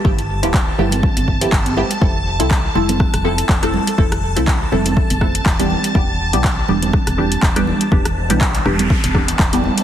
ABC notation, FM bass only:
X:1
M:4/4
L:1/16
Q:"Swing 16ths" 1/4=122
K:Ephr
V:1 name="FM bass" clef=bass
G,,,3 D,,,2 z G,,,2 z G,,,2 z G,,,2 z2 | F,,,3 C,,2 z F,,,2 z F,,,2 z F,,,2 z2 | F,,,3 C,,2 z F,,,2 z F,,,2 z E,,,2 z2 | E,,,3 B,,,2 z E,,,2 z E,,,2 z E,,,2 z2 |
E,,,3 B,,,2 z E,,,2 z E,,,2 z E,,,2 z2 |]